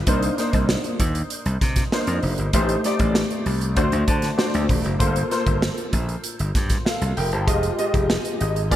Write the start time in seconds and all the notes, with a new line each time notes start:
0.07 C2 A#3 D4 D#4 C5, kick, closed hi-hat
0.23 closed hi-hat
0.38 A#3 D4 D#4 C5, snare, closed hi-hat
0.53 C2, kick, closed hi-hat
0.69 snare
0.84 closed hi-hat
1.00 D#2, kick, closed hi-hat
1.15 closed hi-hat
1.30 closed hi-hat
1.46 C2, closed hi-hat
1.61 C3, kick, snare, closed hi-hat
1.76 kick, snare, closed hi-hat
1.92 A#3 D4 D#4 C5, snare
2.07 F2, closed hi-hat
2.23 F1, open hi-hat
2.38 G1, closed hi-hat
2.53 A1 A3 D#4 G4 C5, kick, closed hi-hat
2.69 closed hi-hat
2.84 A3 D#4 G4 D5, snare, closed hi-hat
2.99 A1, kick, closed hi-hat
3.15 snare
3.30 closed hi-hat
3.46 C2, open hi-hat
3.61 closed hi-hat
3.76 D2 A3 D4 F#4 C5, kick, closed hi-hat
3.92 D2, closed hi-hat
4.08 D3 A5, kick, closed hi-hat
4.22 snare, closed hi-hat
4.37 A3 D4 F#4 C5 D5, snare
4.54 D2, closed hi-hat
4.69 D#1, kick, open hi-hat
4.84 F#1, closed hi-hat
4.99 G1 A#3 F4 A4 C5, kick, closed hi-hat
5.16 closed hi-hat
5.30 A#3 F4 A4 C5, snare, closed hi-hat
5.46 G1, kick, closed hi-hat
5.62 snare
5.78 closed hi-hat
5.93 A#1, kick, closed hi-hat
6.09 closed hi-hat
6.24 closed hi-hat
6.39 G1, closed hi-hat
6.55 G2, kick, snare, closed hi-hat
6.70 kick, snare, closed hi-hat
6.85 A4 F5, snare
7.01 C2, closed hi-hat
7.17 F1 A#4 G5, open hi-hat
7.32 G1 C5 A5, closed hi-hat
7.47 F1 G#3 F4 G4 D#5, kick, closed hi-hat
7.63 closed hi-hat
7.78 G#3 F4 G4 D#5, closed hi-hat
7.94 F1, kick, closed hi-hat
8.10 snare
8.25 closed hi-hat
8.40 G#1 D#5, closed hi-hat
8.56 closed hi-hat
8.70 A#1 A#3 F4 G#4 D5 F5, kick, closed hi-hat